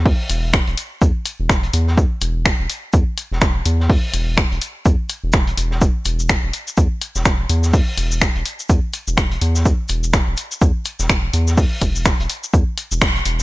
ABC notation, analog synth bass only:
X:1
M:4/4
L:1/16
Q:"Swing 16ths" 1/4=125
K:Clyd
V:1 name="Analog synth bass" clef=bass
E,, z E,,,3 E,,, z2 E,, z2 E,,,3 E,,2- | E,, z E,,,3 E,,, z2 E,, z2 E,,,3 E,,2- | E,, z E,,,3 E,,, z2 E,, z2 E,,,3 E,,,2- | E,,, z E,,,3 E,,, z2 E,, z2 E,,,3 E,,2- |
E,, z E,,,3 E,,, z2 E,, z2 E,,,3 E,,2- | E,, z E,,,3 E,,, z2 E,, z2 E,,,3 E,,2- | E,, z E,,,3 E,,, z2 E,, z2 E,,,3 E,,, z |]